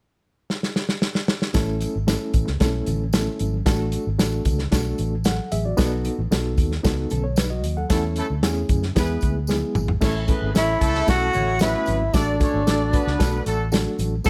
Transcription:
0.50 snare
0.63 snare
0.76 snare
0.89 snare
1.02 snare
1.15 snare
1.28 snare
1.42 snare
1.54 fingered electric bass A1, reed electric piano A3 C#4 E4 A4, kick, snare, closed hi-hat, tambourine
1.81 closed hi-hat, tambourine, muted conga
1.96 fingered electric bass G#1
2.07 reed electric piano A3 C#4 E4 A4, snare, closed hi-hat, tambourine, high conga
2.34 fingered electric bass A1, kick, closed hi-hat, tambourine
2.47 fingered electric bass C#2, snare
2.60 fingered electric bass B1, reed electric piano A3 C4 E4 A4, kick, snare, closed hi-hat, tambourine, muted conga
2.67 reed electric piano C#4
2.86 fingered electric bass A1, closed hi-hat, tambourine, muted conga, low conga
3.13 reed electric piano A3 B3 E4 A4, snare, closed hi-hat, tambourine, high conga
3.20 reed electric piano C#4
3.39 fingered electric bass G#1, closed hi-hat, tambourine, high conga
3.54 high conga
3.66 fingered electric bass A1, reed electric piano A3 D4 F#4 A4, kick, snare, closed hi-hat, tambourine
3.92 closed hi-hat, tambourine, muted conga
4.07 fingered electric bass G#1
4.18 fingered electric bass A1, reed electric piano A3 D4 F#4 A4, snare, closed hi-hat, tambourine, high conga
4.45 fingered electric bass C#2, kick, closed hi-hat, tambourine, low conga
4.59 snare
4.71 fingered electric bass B1, reed electric piano A3 D4 F#4 A4, kick, snare, closed hi-hat, tambourine, muted conga
4.98 fingered electric bass A1, closed hi-hat, tambourine
5.24 reed electric piano A4 F#5, snare, closed hi-hat, tambourine, high conga
5.52 fingered electric bass A1, reed electric piano G#4 E5, closed hi-hat, tambourine, high conga
5.65 reed electric piano F#4 D5, high conga
5.77 fingered electric bass B1, reed electric piano B3 D#4 F#4 A4, kick, snare, closed hi-hat, tambourine
6.05 closed hi-hat, tambourine, muted conga
6.19 fingered electric bass A1
6.31 fingered electric bass B1, reed electric piano B3 D#4 F#4 A4, snare, closed hi-hat, tambourine, high conga
6.57 fingered electric bass D#2, kick, closed hi-hat, tambourine
6.72 snare
6.83 fingered electric bass C#2, reed electric piano B3 D#4 F#4 A4, kick, snare, closed hi-hat, tambourine, muted conga
7.10 fingered electric bass B1, reed electric piano C#4 A4, closed hi-hat, tambourine, muted conga, low conga
7.24 reed electric piano C#5
7.36 reed electric piano D#4 B4, snare, closed hi-hat, tambourine, high conga
7.50 reed electric piano F#4 D#5
7.64 fingered electric bass D#2, closed hi-hat, tambourine, high conga
7.77 reed electric piano A4 F#5, high conga
7.90 fingered electric bass E2, reed electric piano A3 C#4 E4 A4, horn section A3 C#4 E4 A4, kick, snare, closed hi-hat, tambourine
8.16 horn section A3 C#4 E4 A4, closed hi-hat, tambourine, muted conga
8.30 fingered electric bass D2
8.43 fingered electric bass E2, reed electric piano A3 C4 E4 G#4, snare, closed hi-hat, tambourine, high conga
8.49 reed electric piano C#4
8.69 fingered electric bass F#2, kick, closed hi-hat, tambourine, low conga
8.83 snare
8.95 fingered electric bass E2, reed electric piano G#3 B3 E4 G#4, horn section B3 E4 G#4 B4, kick, snare, closed hi-hat, tambourine
9.21 fingered electric bass D2, kick, closed hi-hat, tambourine, muted conga
9.47 reed electric piano G#3 B3 E4 G#4, snare, tambourine, high conga
9.75 fingered electric bass G#1, mid tom, tambourine, high conga
9.88 floor tom, high conga
10.01 fingered electric bass A1, reed electric piano A3 C#4 E4 A4, horn section C#4 E4 A4 C#5, kick, snare, crash, tambourine
10.27 reed electric piano A3 C#4 E4 A4, horn section B3 E4 G#4 B4, kick, closed hi-hat, tambourine, muted conga
10.42 fingered electric bass G#1
10.54 fingered electric bass A1, reed electric piano A3 C#4 E4 A4, horn section C#4 E4 A4 C#5, tenor saxophone E4, snare, closed hi-hat, tambourine, high conga
10.80 fingered electric bass C#2, horn section A3 C#4 E4 A4, kick, closed hi-hat, tambourine
10.95 snare
11.07 fingered electric bass B1, reed electric piano A3 C#4 E4 A4, tenor saxophone F#4, kick, snare, closed hi-hat, tambourine
11.33 fingered electric bass A1, horn section C#4 E4 A4 C#5, closed hi-hat, tambourine, muted conga, low conga
11.59 reed electric piano A3 C#4 E4 F#4, horn section B3 C#4 E4 B4, tenor saxophone E4, snare, closed hi-hat, tambourine, high conga
11.86 fingered electric bass G#1, closed hi-hat, tambourine, high conga
12.14 fingered electric bass A1, reed electric piano A3 D4 F#4 A4, horn section D4 F#4 A4 D5, tenor saxophone D4, kick, snare, closed hi-hat, tambourine
12.39 reed electric piano A3 D4 F#4 A4, horn section C#4 F#4 A4 C#5, kick, closed hi-hat, tambourine, muted conga
12.54 fingered electric bass G#1
12.66 fingered electric bass A1, reed electric piano A3 D4 F#4 A4, horn section D4 F#4 A4 D5, snare, closed hi-hat, tambourine, high conga
12.92 horn section B3 D4 F#4 B4, kick, closed hi-hat, tambourine
13.07 fingered electric bass C#2, snare
13.19 fingered electric bass B1, reed electric piano A3 D4 F#4 A4, kick, snare, closed hi-hat, tambourine, muted conga
13.46 fingered electric bass A1, horn section A3 D4 F#4 A4, closed hi-hat, tambourine, muted conga
13.72 reed electric piano A3 D4 F#4 A4, snare, closed hi-hat, tambourine, high conga
13.99 fingered electric bass A1, closed hi-hat, tambourine, high conga
14.24 fingered electric bass B1, reed electric piano B3 D#4 F#4 A4, tenor saxophone A4, kick, snare, closed hi-hat, tambourine

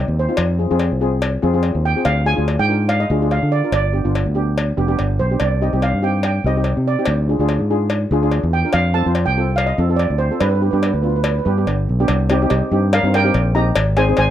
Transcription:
Already playing: steel pan C4 D#4 G4 D#5
0.08 fingered electric bass D#2
0.19 steel pan C5
0.29 steel pan C4 D#4 F4
0.37 fingered electric bass F2, cowbell
0.59 steel pan C4 F4 G#4
0.71 fingered electric bass F2, steel pan C4 F4 G#4
0.79 cowbell
0.92 fingered electric bass C2
1.01 steel pan C4 F4 G#4
1.22 cowbell
1.42 fingered electric bass F2, steel pan C4 F4 G#4
1.54 steel pan C4 F4 G#4
1.63 cowbell
1.75 fingered electric bass D#2
1.85 steel pan G5
1.96 steel pan C4 F4 G#4
2.05 fingered electric bass D2, steel pan F5, cowbell
2.25 steel pan D4 F4 G#4 G#5
2.36 fingered electric bass D2, steel pan D4 F4 G#4
2.48 cowbell
2.59 fingered electric bass G#2, steel pan G5
2.69 steel pan D4 F4 A#4
2.89 steel pan F5, cowbell
3.00 steel pan D#5
3.10 fingered electric bass D2, steel pan D4 F4 G#4
3.22 steel pan D4 F4 G#4
3.31 steel pan F5, cowbell
3.43 fingered electric bass D3
3.52 steel pan D5
3.64 steel pan D4 F4 A#4
3.72 fingered electric bass G1, steel pan D5, cowbell
3.93 steel pan B3 D4 G4
4.05 fingered electric bass G1, steel pan B3 D4 F4
4.15 cowbell
4.26 fingered electric bass D2
4.35 steel pan B3 D4 G4
4.58 cowbell
4.77 fingered electric bass F1, steel pan B3 D4 G4
4.88 steel pan B3 D4 G4
4.99 fingered electric bass G1, cowbell
5.19 fingered electric bass B1, steel pan C5
5.31 steel pan B3 D4 G4
5.40 fingered electric bass C2, steel pan D5, cowbell
5.61 steel pan C4 D#4 G4 D#5
5.73 fingered electric bass C2, steel pan C4 D#4 G4
5.82 steel pan F5, cowbell
5.94 fingered electric bass G2
6.02 steel pan C4 D#4 G4 G5
6.23 steel pan G5, cowbell
6.44 fingered electric bass C2, steel pan C4 D#4 G4 D#5
6.57 steel pan C4 D#4 G4
6.64 cowbell
6.77 fingered electric bass C3
6.88 steel pan D5
6.99 steel pan C4 D#4 G4
7.06 fingered electric bass D2, cowbell
7.29 steel pan D4 F4 G#4
7.39 fingered electric bass D2, steel pan D4 F4 G#4
7.49 cowbell
7.59 fingered electric bass G#2
7.71 steel pan D4 F4 G#4
7.90 cowbell
8.11 fingered electric bass D2, steel pan D4 F4 G#4
8.23 steel pan D4 F4 G#4
8.31 cowbell
8.43 fingered electric bass E2
8.53 steel pan G5
8.65 steel pan D4 F4 A#4
8.73 fingered electric bass F2, steel pan F5, cowbell
8.94 steel pan C4 F4 A4 A5
9.06 fingered electric bass F2, steel pan C4 F4 C5
9.15 cowbell
9.26 fingered electric bass C2, steel pan G5
9.37 steel pan C4 F4 A4
9.56 steel pan F5, cowbell
9.66 steel pan D#5
9.78 fingered electric bass F2, steel pan C4 F4 A4
9.89 steel pan C4 F4 A4
9.96 steel pan D5, cowbell
10.10 fingered electric bass D2
10.18 steel pan C5
10.31 steel pan C4 F4 A4
10.40 fingered electric bass G2, steel pan B4, cowbell
10.49 steel pan B4
10.55 steel pan B4
10.61 steel pan B3 D4 G4 B4
10.71 fingered electric bass G2, steel pan B3 D4 G4 B4
10.78 steel pan B4
10.83 steel pan B4, cowbell
10.93 fingered electric bass D2, steel pan B4
11.02 steel pan B3 D4 F4 B4
11.09 steel pan B4
11.16 steel pan B4
11.23 steel pan B4, cowbell
11.31 steel pan B4
11.39 steel pan B4
11.45 fingered electric bass G2, steel pan B3 D4 G4 B4
11.58 steel pan B3 D4 G4
11.67 fingered electric bass G1, cowbell
11.89 fingered electric bass B1
12.00 steel pan B3 D4 G4
12.08 fingered electric bass C2, cowbell
12.30 steel pan C4 D#4 G4, cowbell
12.42 steel pan C4 D#4 G4
12.50 fingered electric bass C2, steel pan G4 D#5, cowbell
12.71 fingered electric bass G2, steel pan C4 D#4 G4
12.93 steel pan A#4 F5, cowbell
13.03 fingered electric bass G2, steel pan C4 D#4 A#4
13.14 steel pan A#4 G5, cowbell
13.24 steel pan C4 D#4 G4
13.34 fingered electric bass A#1, cowbell
13.55 steel pan C4 D#4 G4 D#5 A#5
13.76 fingered electric bass G#1, cowbell
13.97 steel pan C4 D#4 G#4 C5 G#5, cowbell
14.09 steel pan C4 D#4 G#4
14.17 fingered electric bass G#1, steel pan C5 G#5, cowbell

